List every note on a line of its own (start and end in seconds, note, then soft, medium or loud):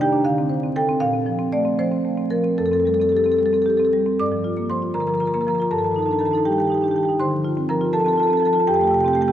0.00 0.24 D#3 medium
0.00 0.21 G4 medium
0.00 0.25 G5 loud
0.13 0.25 D4 medium
0.24 0.98 D3 medium
0.24 0.73 F5 medium
0.38 0.58 C4 medium
0.49 0.70 C5 medium
0.63 0.83 C4 medium
0.76 0.96 A4 medium
0.76 1.00 G5 loud
0.89 1.01 C4 medium
1.00 2.53 A#2 medium
1.00 1.49 F5 loud
1.14 1.34 C4 medium
1.26 1.47 F3 medium
1.39 1.60 C4 medium
1.53 1.73 A3 medium
1.53 1.77 D5 medium
1.65 1.86 C4 medium
1.79 1.99 F3 medium
1.79 2.29 C5 medium
1.92 2.12 C4 medium
2.05 2.25 A3 soft
2.17 2.38 C4 medium
2.30 2.52 F3 medium
2.30 2.56 A#4 medium
2.44 2.57 C4 medium
2.58 4.14 F2 medium
2.58 2.66 A4 medium
2.66 2.73 A4 medium
2.71 2.93 C4 medium
2.71 2.80 A4 medium
2.80 2.87 A4 medium
2.85 3.06 G3 medium
2.85 2.94 A4 medium
2.94 3.02 A4 medium
3.00 3.21 C4 medium
3.00 3.09 A4 medium
3.09 3.33 G4 medium
3.09 3.17 A4 medium
3.17 3.24 A4 medium
3.24 3.47 C4 medium
3.24 3.32 A4 medium
3.32 3.39 A4 medium
3.39 3.61 G3 medium
3.39 3.46 A4 medium
3.46 3.54 A4 medium
3.53 3.74 C4 medium
3.53 3.62 A4 medium
3.62 3.87 G4 medium
3.62 3.70 A4 medium
3.70 3.77 A4 medium
3.77 4.00 C4 medium
3.77 3.85 A4 medium
3.85 3.88 A4 medium
3.93 4.13 G3 medium
4.06 4.18 C4 medium
4.19 5.67 G2 medium
4.19 4.66 D5 medium
4.19 4.68 D6 medium
4.32 4.51 F3 soft
4.44 4.64 F4 medium
4.57 4.77 A#3 medium
4.70 4.89 F3 soft
4.70 4.93 C5 medium
4.70 4.94 C6 medium
4.82 5.02 F4 soft
4.94 5.15 D3 soft
4.94 5.01 A#4 medium
4.94 5.00 A#5 medium
5.00 5.09 A#4 soft
5.00 5.07 A#5 medium
5.07 5.28 F3 soft
5.07 5.18 A#4 soft
5.07 5.14 A#5 medium
5.14 5.25 A#4 soft
5.14 5.20 A#5 medium
5.20 5.41 F4 soft
5.20 5.27 A#5 medium
5.25 5.34 A#4 soft
5.25 5.34 A#5 medium
5.34 5.53 A#3 soft
5.34 5.42 A#4 soft
5.34 5.41 A#5 medium
5.41 5.50 A#4 soft
5.41 5.48 A#5 medium
5.47 5.66 F3 medium
5.47 5.58 A#4 soft
5.47 5.55 A#5 medium
5.55 5.66 A#4 soft
5.55 5.62 A#5 medium
5.60 5.71 F4 soft
5.60 5.67 A#5 medium
5.71 7.16 G2 medium
5.71 5.78 A4 medium
5.71 5.78 A5 medium
5.78 5.86 A4 soft
5.78 5.84 A5 medium
5.83 6.03 D#3 soft
5.83 5.94 A4 medium
5.83 5.91 A5 medium
5.91 6.02 A4 soft
5.91 5.99 A5 medium
5.96 6.16 D#4 medium
5.96 6.06 A5 medium
6.02 6.11 A4 medium
6.02 6.13 A5 medium
6.08 6.28 D4 medium
6.08 6.19 A4 medium
6.13 6.20 A5 medium
6.19 6.41 D#3 soft
6.19 6.27 A4 medium
6.19 6.25 A5 medium
6.25 6.35 A4 soft
6.25 6.31 A5 medium
6.31 6.53 D#4 medium
6.31 6.42 A4 medium
6.31 6.37 A5 medium
6.37 6.43 A5 medium
6.45 6.65 G3 soft
6.45 6.52 G4 medium
6.45 6.53 G5 medium
6.52 6.58 G4 soft
6.52 6.60 G5 medium
6.58 6.78 D#3 soft
6.58 6.65 G4 soft
6.58 6.67 G5 medium
6.65 6.72 G4 soft
6.65 6.74 G5 medium
6.70 6.90 D#4 medium
6.70 6.78 G4 soft
6.74 6.84 G4 soft
6.74 6.81 G5 medium
6.81 7.02 D4 soft
6.81 6.91 G4 medium
6.81 6.88 G5 medium
6.88 6.98 G4 soft
6.88 6.96 G5 medium
6.95 7.14 D#3 medium
6.95 7.05 G4 soft
6.95 7.03 G5 medium
7.03 7.15 G4 soft
7.03 7.10 G5 medium
7.08 7.20 D#4 soft
7.08 7.16 G5 medium
7.20 8.63 D3 medium
7.20 7.66 C5 medium
7.20 7.67 C6 medium
7.31 7.51 F3 soft
7.44 7.64 F4 medium
7.57 7.77 C4 medium
7.69 7.89 F3 medium
7.69 7.92 A#4 medium
7.69 7.93 A#5 medium
7.81 8.01 F4 medium
7.93 8.13 F3 soft
7.93 8.01 A4 medium
7.93 8.00 A5 medium
8.00 8.08 A4 medium
8.00 8.06 A5 medium
8.04 8.25 C4 soft
8.04 8.13 A5 medium
8.08 8.16 A4 medium
8.13 8.23 A4 medium
8.13 8.20 A5 medium
8.18 8.37 F4 medium
8.18 8.27 A5 medium
8.23 8.30 A4 medium
8.27 8.50 C4 soft
8.27 8.37 A4 medium
8.27 8.33 A5 medium
8.33 8.40 A5 medium
8.37 8.45 A4 medium
8.37 8.46 A5 medium
8.42 8.62 F3 medium
8.42 8.53 A4 medium
8.46 8.53 A5 medium
8.53 8.67 F4 medium
8.53 8.63 A4 medium
8.53 8.60 A5 medium
8.60 8.64 A5 medium
8.67 9.32 F2 medium
8.67 8.76 G4 medium
8.67 8.74 G5 loud
8.74 8.84 G4 medium
8.74 8.81 G5 medium
8.80 8.99 A3 soft
8.80 8.88 G5 medium
8.84 8.91 G4 medium
8.84 8.94 G5 medium
8.91 9.11 C3 medium
8.91 8.99 G4 medium
8.91 9.01 G5 medium
8.99 9.06 G4 medium
8.99 9.08 G5 medium
9.04 9.24 C4 medium
9.04 9.13 G4 medium
9.04 9.15 G5 medium
9.13 9.32 A3 medium
9.13 9.21 G4 medium
9.13 9.22 G5 medium
9.21 9.28 G4 medium
9.21 9.28 G5 medium
9.28 9.32 C3 medium
9.28 9.32 G4 medium
9.28 9.32 G5 medium